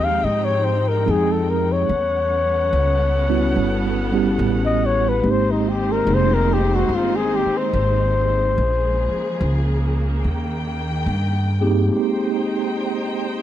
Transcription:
Already playing: upright bass D#2, tine electric piano F3 G#3 C4 D#4 G4, string section F3 G#3 C4 D#4 G5
0.04 flugelhorn F5
0.24 upright bass G#2, flugelhorn D#5
0.45 flugelhorn C#5
0.64 flugelhorn C5
0.88 flugelhorn A#4
1.05 upright bass F2, tine electric piano F3 G#3 C4 D#4 G#4
1.11 flugelhorn G#4
1.32 flugelhorn A4
1.50 flugelhorn A#4
1.72 flugelhorn C#5
1.89 upright bass E2, string section G3 B3 C#4 A4 F#5
2.73 upright bass C#2
3.29 tine electric piano G3 B3 C#4 E4 F#4
3.56 upright bass G1
4.12 tine electric piano G3 B3 C#4 E4 G4
4.39 upright bass A1
4.65 flugelhorn D#5
4.86 flugelhorn C#5
5.09 flugelhorn B4
5.22 upright bass G#1, tine electric piano G#3 A#3 C4 D#4 G4
5.26 string section D#3 G#3 C4 D#4 C5
5.31 flugelhorn C5
5.51 flugelhorn D#4
5.69 flugelhorn G4
5.92 flugelhorn A#4
6.05 upright bass F1, tine electric piano G#3 A#3 C4 D#4 G#4
6.15 flugelhorn C5
6.34 flugelhorn A#4
6.54 flugelhorn G4
6.75 flugelhorn F#4
6.89 upright bass G1
6.95 flugelhorn F4
7.16 flugelhorn G#4
7.36 flugelhorn G4
7.46 muted upright bass stroke
7.58 flugelhorn C5
7.73 upright bass G#1
8.55 upright bass A#1, string section C#3 F3 A#3 G#4
9.13 muted upright bass stroke
9.41 upright bass C#2
10.23 upright bass D#2, string section D#3 G5
11.06 upright bass G2
11.61 tine electric piano A#3 C4 D#4 G4 G#4
11.87 tine electric piano G#3 A#3 C4 D#4
11.92 string section D#4 C5 G5, tine electric piano G4

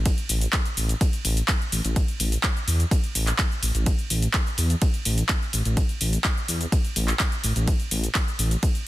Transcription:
Already playing: detuned saw bass A1
0.06 kick, closed hi-hat, ride, shaker
0.18 closed hi-hat, shaker
0.29 detuned saw bass A1, open hi-hat, shaker
0.41 closed hi-hat, shaker
0.53 kick, clap, closed hi-hat, ride, shaker
0.66 closed hi-hat, shaker
0.77 detuned saw bass A1, open hi-hat, shaker
0.89 closed hi-hat, shaker
1.01 kick, closed hi-hat, ride, shaker
1.13 closed hi-hat, shaker
1.25 detuned saw bass A1, open hi-hat, shaker
1.37 closed hi-hat, shaker
1.48 kick, clap, closed hi-hat, ride, shaker
1.61 shaker
1.72 detuned saw bass A1, open hi-hat, shaker
1.85 detuned saw bass A1, closed hi-hat, shaker
1.96 kick, closed hi-hat, ride, shaker
2.08 closed hi-hat, shaker
2.20 detuned saw bass A1, open hi-hat, shaker
2.32 closed hi-hat, shaker
2.43 kick, clap, closed hi-hat, ride, shaker
2.57 shaker
2.68 detuned saw bass E2, open hi-hat, shaker
2.80 closed hi-hat, shaker
2.91 kick, closed hi-hat, ride, shaker
3.04 closed hi-hat, shaker
3.15 detuned saw bass A1, open hi-hat, shaker
3.27 clap, closed hi-hat, shaker
3.39 kick, clap, closed hi-hat, ride, shaker
3.52 shaker
3.63 detuned saw bass A1, open hi-hat, shaker
3.75 detuned saw bass A1, closed hi-hat, shaker
3.86 kick, closed hi-hat, ride, shaker
3.99 closed hi-hat, shaker
4.10 detuned saw bass A1, open hi-hat, shaker
4.22 closed hi-hat, shaker
4.34 kick, clap, closed hi-hat, ride, shaker
4.47 shaker
4.58 detuned saw bass E2, open hi-hat, shaker
4.70 closed hi-hat, shaker
4.82 kick, closed hi-hat, ride, shaker
4.94 closed hi-hat, shaker
5.05 detuned saw bass A1, open hi-hat, shaker
5.18 closed hi-hat, shaker
5.29 kick, clap, closed hi-hat, ride, shaker
5.42 shaker
5.53 detuned saw bass A1, open hi-hat, shaker
5.65 detuned saw bass A1, closed hi-hat, shaker
5.77 kick, closed hi-hat, ride, shaker
5.89 closed hi-hat, shaker
6.01 detuned saw bass A1, open hi-hat, shaker
6.13 closed hi-hat, shaker
6.24 kick, clap, closed hi-hat, ride, shaker
6.37 shaker
6.48 detuned saw bass E2, open hi-hat, shaker
6.61 closed hi-hat, shaker
6.72 kick, closed hi-hat, ride, shaker
6.85 closed hi-hat, shaker
6.96 detuned saw bass A1, open hi-hat, shaker
7.08 clap, closed hi-hat, shaker
7.19 kick, clap, closed hi-hat, ride, shaker
7.32 closed hi-hat, shaker
7.44 detuned saw bass A1, open hi-hat, shaker
7.56 detuned saw bass A1, closed hi-hat, shaker
7.68 kick, closed hi-hat, ride, shaker
7.80 closed hi-hat, shaker
7.91 detuned saw bass A1, open hi-hat, shaker
8.04 closed hi-hat, shaker
8.15 kick, clap, closed hi-hat, ride, shaker
8.28 shaker
8.39 detuned saw bass A1, open hi-hat, shaker
8.51 closed hi-hat, shaker
8.63 kick, closed hi-hat, ride, shaker
8.75 closed hi-hat, shaker

